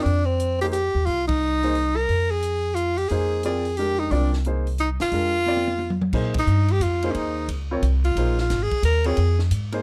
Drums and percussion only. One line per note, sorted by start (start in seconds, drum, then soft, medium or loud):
0.06 open hi-hat soft
0.40 closed hi-hat medium
0.61 open hi-hat soft
0.73 closed hi-hat soft
1.06 open hi-hat soft
1.29 kick medium
1.29 ride medium
1.63 open hi-hat soft
1.75 open hi-hat soft
2.09 open hi-hat soft
2.42 closed hi-hat medium
2.76 closed hi-hat soft
2.98 open hi-hat soft
3.09 open hi-hat soft
3.43 closed hi-hat medium
3.65 open hi-hat soft
3.77 open hi-hat soft
4.11 open hi-hat soft
4.33 snare soft
4.45 closed hi-hat soft
4.67 open hi-hat soft
4.78 closed hi-hat soft
5.00 snare soft
5.00 open hi-hat soft
5.12 open hi-hat soft
5.46 high tom soft
5.57 high tom medium
5.68 high tom medium
5.79 high tom medium
5.90 mid tom medium
6.01 mid tom medium
6.13 kick medium
6.13 crash medium
6.34 kick medium
6.34 ride medium
6.47 hi-hat pedal medium
6.68 ride soft
6.81 hi-hat pedal medium
6.81 ride medium
7.02 ride soft
7.14 ride medium
7.49 ride medium
7.83 hi-hat pedal medium
7.83 ride medium
8.05 ride soft
8.17 ride medium
8.38 snare soft
8.50 snare soft
8.50 hi-hat pedal medium
8.50 ride medium
8.71 kick medium
8.71 ride soft
8.83 hi-hat pedal medium
8.83 ride medium
9.04 ride soft
9.17 ride medium
9.39 snare soft
9.51 hi-hat pedal medium
9.51 ride medium
9.72 ride soft